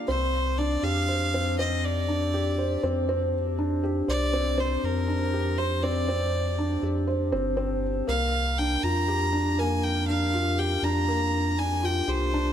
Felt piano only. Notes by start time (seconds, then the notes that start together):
Already playing: A#3 D4 F4 G4
0.08 C4
0.59 D4
0.83 G4
1.08 C5
1.34 C4
1.59 C4
2.08 D4
2.34 G4
2.58 C5
2.83 C4
3.09 C4
3.58 D4
3.84 G4
4.08 C5
4.33 C4
4.58 C4
5.08 D4
5.33 G4
5.58 C5
5.83 C4
6.08 C4
6.58 D4
6.83 G4
7.07 C5
7.32 C4
7.57 C4
8.07 A#3
8.59 D4
8.84 F4
9.08 G4
9.33 D4
9.59 A#3
10.09 D4
10.34 F4
10.59 G4
10.84 D4
11.08 A#3
11.59 D4
11.83 F4
12.08 G4
12.34 D4